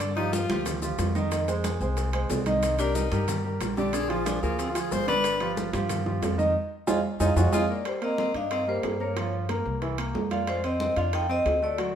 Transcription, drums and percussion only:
0.00 high bongo medium
0.00 high timbale medium
0.00 maracas medium
0.17 high conga soft
0.17 high timbale medium
0.33 high bongo medium
0.33 high conga loud
0.33 maracas medium
0.49 high bongo soft
0.49 high conga loud
0.49 high timbale medium
0.49 maracas soft
0.66 high bongo medium
0.66 high conga soft
0.66 low conga medium
0.66 high timbale medium
0.66 maracas medium
0.82 high bongo soft
0.82 high conga soft
0.82 low conga medium
0.82 maracas medium
0.99 high bongo medium
0.99 low bongo medium
0.99 high conga medium
0.99 high timbale medium
0.99 maracas medium
1.15 high bongo soft
1.15 high conga medium
1.15 maracas soft
1.31 high bongo medium
1.31 high conga soft
1.31 high timbale medium
1.31 maracas medium
1.48 high bongo soft
1.48 high conga soft
1.48 high timbale medium
1.48 maracas medium
1.64 high bongo medium
1.64 high conga loud
1.64 high timbale medium
1.64 maracas medium
1.81 high bongo soft
1.81 high conga soft
1.81 maracas soft
1.97 high bongo medium
1.97 high conga soft
1.97 high timbale medium
1.97 maracas medium
2.13 high conga soft
2.13 high timbale medium
2.30 high bongo medium
2.30 low bongo medium
2.30 high conga medium
2.30 low timbale medium
2.30 maracas medium
2.46 high bongo soft
2.46 high conga medium
2.46 high timbale medium
2.46 maracas soft
2.63 high bongo medium
2.63 high conga soft
2.63 high timbale medium
2.63 maracas medium
2.79 high timbale medium
2.79 maracas medium
2.95 high bongo medium
2.95 high conga medium
2.95 maracas medium
3.12 high bongo soft
3.12 high conga medium
3.12 high timbale medium
3.12 maracas soft
3.28 high bongo medium
3.28 high conga soft
3.28 low conga loud
3.28 high timbale medium
3.28 maracas medium
3.45 high bongo soft
3.45 high conga soft
3.61 high bongo medium
3.61 low bongo medium
3.61 high conga medium
3.61 high timbale medium
3.61 maracas medium
3.77 high bongo soft
3.77 high conga medium
3.77 maracas soft
3.93 high bongo medium
3.93 high timbale medium
3.93 maracas medium
4.10 high bongo soft
4.10 high conga soft
4.10 high timbale medium
4.26 high bongo medium
4.26 high conga loud
4.26 high timbale medium
4.26 maracas medium
4.43 high bongo soft
4.43 high conga soft
4.43 maracas soft
4.59 high bongo medium
4.59 high conga soft
4.59 high timbale medium
4.59 maracas medium
4.75 high conga soft
4.75 high timbale medium
4.75 maracas medium
4.92 high bongo medium
4.92 low bongo medium
4.92 high conga medium
4.92 maracas medium
5.08 high bongo soft
5.08 high conga medium
5.08 high timbale medium
5.08 maracas soft
5.24 high bongo medium
5.24 high conga soft
5.24 high timbale medium
5.24 maracas medium
5.40 high conga soft
5.40 high timbale medium
5.57 high bongo medium
5.57 high conga loud
5.57 maracas medium
5.73 high bongo soft
5.73 high conga medium
5.73 high timbale medium
5.73 maracas soft
5.89 high bongo medium
5.89 high conga soft
5.89 low conga medium
5.89 high timbale medium
5.89 maracas medium
6.06 high bongo soft
6.06 high conga soft
6.06 low conga medium
6.23 high bongo medium
6.23 low bongo medium
6.23 high conga loud
6.23 high timbale medium
6.23 low timbale medium
6.23 maracas medium
6.39 high bongo soft
6.39 high conga medium
6.39 maracas soft
6.88 low bongo loud
6.88 high conga loud
6.88 high timbale loud
6.88 maracas medium
7.20 low bongo medium
7.20 high conga loud
7.20 high timbale medium
7.20 maracas loud
7.37 low bongo loud
7.37 high conga loud
7.37 high timbale loud
7.37 maracas loud
7.53 low bongo loud
7.53 high conga medium
7.53 high timbale medium
7.53 maracas loud
7.85 high bongo medium
7.85 high conga soft
7.85 high timbale medium
8.02 high bongo soft
8.02 high conga soft
8.02 high timbale medium
8.18 high bongo medium
8.18 high conga loud
8.34 high bongo soft
8.34 high conga soft
8.34 high timbale medium
8.51 high bongo medium
8.51 high conga soft
8.51 high timbale medium
8.68 high bongo soft
8.68 high conga soft
8.83 high bongo soft
8.83 low bongo medium
8.83 high conga soft
8.83 high timbale medium
8.83 low timbale medium
9.00 high conga soft
9.17 high bongo medium
9.17 high conga soft
9.17 high timbale medium
9.33 high bongo soft
9.33 high conga soft
9.49 high bongo medium
9.49 high conga medium
9.49 high timbale medium
9.66 high bongo soft
9.66 high conga soft
9.82 high bongo medium
9.82 high conga soft
9.82 high timbale medium
9.98 high bongo soft
9.98 high conga soft
9.98 high timbale medium
10.15 high bongo soft
10.15 low bongo medium
10.15 high conga medium
10.15 low timbale medium
10.31 high conga medium
10.31 high timbale medium
10.47 high bongo medium
10.47 high conga soft
10.47 high timbale medium
10.64 high bongo soft
10.64 high conga soft
10.64 high timbale medium
10.80 high bongo medium
10.80 high conga loud
10.96 high bongo soft
10.96 high conga soft
10.96 high timbale medium
11.13 high bongo medium
11.13 high conga soft
11.13 high timbale medium
11.29 high bongo soft
11.29 high conga soft
11.46 high bongo soft
11.46 low bongo medium
11.46 high conga soft
11.46 high timbale medium
11.46 low timbale medium
11.62 high conga soft
11.78 high bongo medium
11.78 high conga soft
11.78 high timbale medium

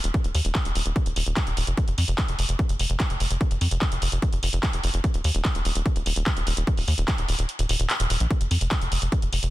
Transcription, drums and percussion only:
0.04 closed hi-hat medium
0.14 kick loud
0.14 closed hi-hat medium
0.24 closed hi-hat medium
0.35 open hi-hat loud
0.45 closed hi-hat medium
0.55 kick loud
0.55 clap loud
0.55 closed hi-hat medium
0.65 closed hi-hat medium
0.75 open hi-hat loud
0.86 closed hi-hat medium
0.96 kick loud
0.96 closed hi-hat medium
1.06 closed hi-hat medium
1.16 open hi-hat loud
1.26 closed hi-hat medium
1.37 kick loud
1.37 clap loud
1.37 closed hi-hat medium
1.47 closed hi-hat medium
1.57 open hi-hat loud
1.67 closed hi-hat medium
1.77 kick loud
1.77 closed hi-hat medium
1.88 closed hi-hat medium
1.98 open hi-hat loud
2.08 closed hi-hat medium
2.18 kick loud
2.18 clap loud
2.18 closed hi-hat medium
2.28 closed hi-hat medium
2.39 open hi-hat loud
2.49 closed hi-hat medium
2.59 kick loud
2.59 closed hi-hat medium
2.69 closed hi-hat medium
2.79 open hi-hat loud
2.90 closed hi-hat medium
3.00 kick loud
3.00 clap loud
3.00 closed hi-hat medium
3.10 closed hi-hat medium
3.20 open hi-hat loud
3.31 closed hi-hat medium
3.41 kick loud
3.41 closed hi-hat medium
3.51 closed hi-hat medium
3.61 open hi-hat loud
3.71 closed hi-hat medium
3.82 kick loud
3.82 clap loud
3.82 closed hi-hat medium
3.92 closed hi-hat medium
4.02 open hi-hat loud
4.12 closed hi-hat medium
4.22 kick loud
4.22 closed hi-hat medium
4.33 closed hi-hat medium
4.43 open hi-hat loud
4.53 closed hi-hat medium
4.63 kick loud
4.63 clap loud
4.63 closed hi-hat medium
4.73 closed hi-hat medium
4.84 open hi-hat loud
4.94 closed hi-hat medium
5.04 kick loud
5.04 closed hi-hat medium
5.14 closed hi-hat medium
5.24 open hi-hat loud
5.35 closed hi-hat medium
5.45 kick loud
5.45 clap loud
5.45 closed hi-hat medium
5.55 closed hi-hat medium
5.65 open hi-hat loud
5.75 closed hi-hat medium
5.86 kick loud
5.86 closed hi-hat medium
5.96 closed hi-hat medium
6.06 open hi-hat loud
6.16 closed hi-hat medium
6.26 kick loud
6.26 clap loud
6.26 closed hi-hat medium
6.37 closed hi-hat medium
6.47 open hi-hat loud
6.57 closed hi-hat medium
6.67 kick loud
6.67 closed hi-hat medium
6.77 open hi-hat medium
6.88 open hi-hat loud
6.98 closed hi-hat medium
7.08 kick loud
7.08 clap loud
7.08 closed hi-hat medium
7.18 closed hi-hat medium
7.28 open hi-hat loud
7.39 closed hi-hat medium
7.49 closed hi-hat medium
7.59 closed hi-hat medium
7.69 open hi-hat loud
7.80 closed hi-hat medium
7.90 clap loud
7.90 closed hi-hat medium
8.00 closed hi-hat medium
8.10 open hi-hat loud
8.20 closed hi-hat medium
8.31 kick loud
8.31 closed hi-hat medium
8.41 closed hi-hat medium
8.51 open hi-hat loud
8.61 closed hi-hat medium
8.71 kick loud
8.71 clap loud
8.71 closed hi-hat medium
8.82 closed hi-hat medium
8.92 open hi-hat loud
9.02 closed hi-hat medium
9.12 kick loud
9.12 closed hi-hat medium
9.22 closed hi-hat medium
9.33 open hi-hat loud
9.43 closed hi-hat medium

